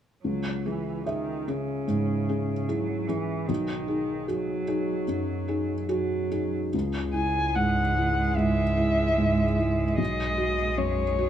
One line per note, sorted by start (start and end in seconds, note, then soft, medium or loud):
0.23 1.84 C#2 soft
0.23 0.68 F#3 soft
0.65 1.06 E3 soft
0.65 1.02 C#4 soft
0.65 1.03 G#4 soft
1.06 1.49 D#3 soft
1.06 1.44 G#4 soft
1.06 1.43 E5 soft
1.48 2.70 C#3 soft
1.48 1.84 C#4 soft
1.48 1.84 G#4 soft
1.87 2.52 G#2 soft
2.29 2.65 C#4 soft
2.29 2.65 G#4 soft
2.68 3.09 F#3 soft
2.68 3.05 E4 soft
2.68 3.05 G#4 soft
3.08 3.49 E3 soft
3.08 3.45 C#4 soft
3.08 3.45 G#4 soft
3.47 5.04 B1 soft
3.47 4.29 D#3 soft
3.88 4.24 D#4 soft
3.88 4.24 G#4 soft
4.27 5.89 F#3 soft
4.27 4.64 F#4 soft
4.27 4.64 G#4 soft
4.68 5.04 D#4 soft
4.68 5.04 G#4 soft
5.08 5.73 F#2 soft
5.48 5.85 D#4 soft
5.48 5.86 G#4 soft
5.89 6.52 F#3 soft
5.89 6.27 F#4 soft
5.89 6.27 G#4 soft
6.31 6.70 D#4 soft
6.31 6.70 G#4 soft
6.73 10.00 C#2 soft
6.73 8.33 C#2 soft
6.73 11.29 G#3 soft
7.14 7.80 E4 soft
7.14 7.56 G#5 medium
7.55 8.21 G#2 soft
7.55 8.38 F#5 medium
7.97 8.62 E4 soft
8.37 9.03 G#2 soft
8.37 9.98 E5 medium
8.77 9.43 E4 soft
9.18 9.83 G#2 soft
9.58 9.99 E4 soft
9.98 11.29 B1 soft
9.98 10.80 D#5 medium
10.38 11.03 F#4 soft
10.77 11.29 F#2 soft
10.77 11.29 C#5 medium
11.19 11.29 F#4 soft